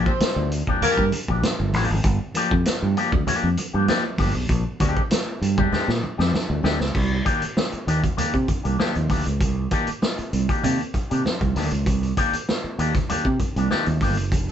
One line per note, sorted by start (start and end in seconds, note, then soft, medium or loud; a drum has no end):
0.00 0.11 F3 medium
0.00 0.11 A#3 loud
0.00 0.11 D4 medium
0.00 0.11 G4 loud
0.06 0.48 C4 medium
0.06 0.48 C5 medium
0.06 kick loud
0.20 muted fingered electric bass stroke medium
0.20 muted clean electric guitar stroke soft
0.20 snare loud
0.20 closed hi-hat loud
0.20 high conga medium
0.36 0.61 D2 medium
0.36 muted clean electric guitar stroke soft
0.51 closed hi-hat medium
0.67 0.81 F3 medium
0.67 0.82 A#3 medium
0.67 0.82 D4 medium
0.67 0.82 G4 medium
0.67 kick medium
0.67 low conga medium
0.82 1.03 F3 medium
0.82 1.06 A#3 loud
0.82 1.03 A#3 loud
0.82 1.03 D4 medium
0.82 1.03 G4 loud
0.82 1.06 A#4 loud
0.82 muted fingered electric bass stroke medium
0.82 closed hi-hat loud
0.82 muted conga medium
0.82 low conga medium
0.97 1.10 G2 medium
0.97 kick medium
1.12 muted clean electric guitar stroke soft
1.12 closed hi-hat medium
1.12 muted conga medium
1.28 1.40 A#1 medium
1.28 1.42 F3 soft
1.28 1.41 A#3 medium
1.28 1.41 D4 medium
1.28 1.41 G4 medium
1.28 kick medium
1.43 snare loud
1.43 closed hi-hat medium
1.43 high conga medium
1.60 1.74 G1 medium
1.60 muted clean electric guitar stroke medium
1.73 1.87 A1 loud
1.73 1.95 F3 medium
1.73 1.90 A#3 medium
1.73 1.90 D4 medium
1.73 1.89 G4 medium
1.73 snare soft
1.73 open hi-hat medium
1.73 high conga medium
1.91 2.02 G#1 loud
1.91 muted clean electric guitar stroke medium
2.04 2.18 G1 loud
2.04 kick loud
2.04 closed hi-hat loud
2.34 2.53 F3 loud
2.34 2.53 A#3 medium
2.34 2.53 D4 loud
2.34 2.53 G4 loud
2.34 closed hi-hat medium
2.34 muted conga soft
2.51 2.63 F2 medium
2.51 kick loud
2.65 muted fingered electric bass stroke medium
2.65 snare loud
2.65 closed hi-hat loud
2.65 high conga medium
2.82 2.94 G2 loud
2.82 muted clean electric guitar stroke soft
2.96 3.14 F3 medium
2.96 3.12 A#3 medium
2.96 3.12 D4 loud
2.96 3.11 G4 loud
2.96 closed hi-hat medium
3.12 3.24 D2 medium
3.12 muted clean electric guitar stroke soft
3.12 kick loud
3.12 low conga medium
3.27 3.48 F3 medium
3.27 3.48 A#3 medium
3.27 3.48 D4 loud
3.27 3.48 G4 loud
3.27 muted fingered electric bass stroke medium
3.27 closed hi-hat loud
3.27 muted conga medium
3.27 low conga medium
3.43 3.55 F2 medium
3.57 muted clean electric guitar stroke soft
3.57 closed hi-hat medium
3.57 muted conga medium
3.73 3.86 G2 medium
3.73 3.86 F3 medium
3.73 3.86 A#3 medium
3.73 3.86 D4 soft
3.73 3.86 G4 medium
3.88 4.05 F3 loud
3.88 4.04 A#3 loud
3.88 4.04 D4 loud
3.88 4.04 G4 loud
3.88 snare loud
3.88 closed hi-hat medium
3.88 high conga medium
4.05 muted clean electric guitar stroke soft
4.18 4.32 G1 medium
4.18 4.33 F3 medium
4.18 4.33 A#3 medium
4.18 4.33 D4 medium
4.18 4.33 G4 medium
4.18 kick medium
4.18 snare soft
4.18 open hi-hat medium
4.18 high conga medium
4.35 4.47 B1 medium
4.35 muted clean electric guitar stroke medium
4.49 4.63 A#1 loud
4.49 kick loud
4.49 closed hi-hat loud
4.80 4.94 D2 medium
4.80 5.01 G#3 medium
4.80 5.01 C4 medium
4.80 5.01 D4 medium
4.80 5.01 G4 medium
4.80 kick loud
4.80 closed hi-hat medium
4.80 muted conga medium
4.97 kick medium
5.11 muted clean electric guitar stroke soft
5.11 snare loud
5.11 closed hi-hat loud
5.11 high conga medium
5.27 muted clean electric guitar stroke soft
5.42 5.67 G2 medium
5.42 closed hi-hat medium
5.57 5.71 G#3 medium
5.57 5.71 C4 medium
5.57 5.71 D4 medium
5.57 5.72 G4 medium
5.57 kick loud
5.57 low conga medium
5.72 5.89 G#3 medium
5.72 5.89 C4 medium
5.72 5.90 D4 medium
5.72 5.90 G4 loud
5.72 muted fingered electric bass stroke medium
5.72 snare medium
5.72 muted conga medium
5.72 low conga medium
5.88 6.00 A#2 loud
5.88 snare medium
6.02 muted clean electric guitar stroke soft
6.02 muted conga medium
6.18 6.31 F2 loud
6.18 6.31 G#3 soft
6.18 6.31 C4 soft
6.18 6.31 D4 medium
6.18 6.31 G4 medium
6.18 snare medium
6.33 muted clean electric guitar stroke medium
6.33 snare medium
6.33 high conga medium
6.49 6.62 D2 medium
6.49 muted clean electric guitar stroke soft
6.63 6.77 D2 loud
6.63 6.81 G#3 medium
6.63 6.79 C4 medium
6.63 6.79 D4 medium
6.63 6.79 G4 medium
6.63 snare loud
6.63 high conga medium
6.80 6.92 C#2 medium
6.80 muted clean electric guitar stroke soft
6.80 snare medium
6.95 7.20 C2 loud
6.95 kick loud
6.95 crash loud
6.95 muted conga soft
7.25 7.42 D#3 loud
7.25 7.43 A#3 medium
7.25 7.43 D4 medium
7.25 7.43 G4 loud
7.25 kick loud
7.25 closed hi-hat medium
7.25 muted conga soft
7.42 muted fingered electric bass stroke soft
7.42 closed hi-hat medium
7.57 snare loud
7.57 high conga medium
7.72 muted clean electric guitar stroke soft
7.72 muted fingered electric bass stroke soft
7.72 closed hi-hat soft
7.87 8.00 D#2 medium
7.87 8.04 D#3 medium
7.87 8.03 A#3 medium
7.87 8.02 D4 medium
7.87 8.02 G4 medium
7.87 closed hi-hat medium
8.03 muted clean electric guitar stroke soft
8.03 kick loud
8.03 closed hi-hat soft
8.03 low conga medium
8.17 8.35 D#3 medium
8.17 8.35 A#3 medium
8.17 8.35 D4 medium
8.17 8.35 G4 medium
8.17 muted fingered electric bass stroke soft
8.17 closed hi-hat loud
8.17 muted conga soft
8.17 low conga medium
8.34 8.46 C3 medium
8.34 kick medium
8.34 closed hi-hat soft
8.48 muted clean electric guitar stroke soft
8.48 kick medium
8.48 closed hi-hat medium
8.48 muted conga medium
8.63 8.77 C2 medium
8.63 8.77 D#3 soft
8.63 8.77 A#3 medium
8.63 8.76 D4 medium
8.63 8.76 G4 medium
8.63 closed hi-hat soft
8.79 8.96 D#3 medium
8.79 8.95 A#3 loud
8.79 8.95 D4 loud
8.79 8.95 G4 loud
8.79 snare medium
8.79 high conga medium
8.95 9.10 D#2 medium
8.95 muted clean electric guitar stroke soft
8.95 closed hi-hat soft
8.95 high conga soft
9.09 9.23 D2 loud
9.09 9.23 D#3 medium
9.09 9.24 A#3 medium
9.09 9.24 D4 medium
9.09 9.24 G4 medium
9.09 kick medium
9.09 snare soft
9.09 open hi-hat medium
9.09 high conga medium
9.25 9.41 C#2 medium
9.25 muted clean electric guitar stroke soft
9.25 closed hi-hat soft
9.40 9.66 C2 loud
9.40 kick loud
9.40 closed hi-hat medium
9.71 9.88 D#3 medium
9.71 9.89 A#3 loud
9.71 9.89 D4 loud
9.71 9.89 G4 loud
9.71 kick medium
9.71 closed hi-hat medium
9.71 muted conga medium
9.87 muted fingered electric bass stroke soft
9.87 closed hi-hat medium
10.02 muted clean electric guitar stroke soft
10.02 snare loud
10.02 high conga medium
10.18 muted clean electric guitar stroke medium
10.18 muted fingered electric bass stroke soft
10.18 closed hi-hat soft
10.33 10.46 C2 medium
10.33 closed hi-hat medium
10.49 10.62 D#3 medium
10.49 10.62 A#3 medium
10.49 10.63 D4 medium
10.49 10.63 G4 medium
10.49 kick loud
10.49 closed hi-hat medium
10.63 10.77 C3 loud
10.63 10.80 D#3 loud
10.63 10.80 A#3 loud
10.63 10.81 D4 medium
10.63 10.81 G4 medium
10.63 closed hi-hat loud
10.63 muted conga soft
10.63 low conga medium
10.80 closed hi-hat soft
10.94 muted clean electric guitar stroke soft
10.94 muted fingered electric bass stroke soft
10.94 kick medium
10.94 closed hi-hat medium
10.94 muted conga medium
11.10 11.23 C3 medium
11.10 11.23 D#3 medium
11.10 11.23 A#3 medium
11.10 11.22 D4 medium
11.10 11.22 G4 medium
11.10 closed hi-hat medium
11.25 snare medium
11.25 high conga medium
11.41 11.53 C2 medium
11.41 muted clean electric guitar stroke soft
11.41 kick medium
11.41 closed hi-hat soft
11.41 high conga medium
11.55 11.69 D2 loud
11.55 11.73 D#3 medium
11.55 11.71 A#3 medium
11.55 11.71 D4 medium
11.55 11.70 G4 medium
11.55 snare soft
11.55 open hi-hat medium
11.55 high conga medium
11.71 11.87 C#2 loud
11.71 muted clean electric guitar stroke soft
11.71 closed hi-hat soft
11.86 12.11 C2 loud
11.86 kick loud
11.86 closed hi-hat medium
11.86 muted conga soft
12.03 closed hi-hat soft
12.17 12.34 D#3 medium
12.17 12.34 A#3 medium
12.17 12.34 D4 medium
12.17 12.34 G4 loud
12.17 kick loud
12.17 closed hi-hat medium
12.17 muted conga soft
12.33 muted fingered electric bass stroke medium
12.33 closed hi-hat medium
12.49 snare loud
12.49 high conga medium
12.64 muted fingered electric bass stroke soft
12.64 muted clean electric guitar stroke medium
12.79 12.92 D#2 medium
12.79 12.96 D#3 medium
12.79 12.94 A#3 loud
12.79 12.94 D4 medium
12.79 12.93 G4 medium
12.79 closed hi-hat medium
12.94 muted clean electric guitar stroke soft
12.94 kick loud
12.94 snare soft
12.94 closed hi-hat soft
12.94 low conga medium
13.09 13.26 D#3 medium
13.09 13.26 A#3 medium
13.09 13.26 D4 medium
13.09 13.27 G4 medium
13.09 muted fingered electric bass stroke medium
13.09 closed hi-hat medium
13.09 muted conga medium
13.09 low conga medium
13.25 13.37 C3 medium
13.25 kick medium
13.40 muted clean electric guitar stroke soft
13.40 kick medium
13.40 closed hi-hat medium
13.40 muted conga medium
13.56 13.68 C2 medium
13.56 13.69 D#3 soft
13.56 13.69 A#3 medium
13.56 13.68 D4 medium
13.56 13.68 G4 medium
13.56 closed hi-hat soft
13.70 13.87 D#3 medium
13.70 13.87 A#3 medium
13.70 13.87 D4 loud
13.70 13.86 G4 loud
13.70 snare medium
13.70 high conga medium
13.86 13.98 D#2 medium
13.86 muted clean electric guitar stroke medium
13.86 closed hi-hat soft
13.86 high conga soft
14.01 14.18 G1 loud
14.01 14.15 D#3 medium
14.01 14.15 A#3 medium
14.01 14.15 D4 medium
14.01 14.15 G4 medium
14.01 kick medium
14.01 snare soft
14.01 open hi-hat medium
14.01 high conga medium
14.17 14.32 F#1 medium
14.17 muted clean electric guitar stroke soft
14.17 closed hi-hat soft
14.32 14.52 F1 loud
14.32 kick loud
14.32 closed hi-hat medium
14.32 muted conga soft
14.48 14.52 D#3 medium
14.48 14.52 C4 medium
14.48 14.52 A4 medium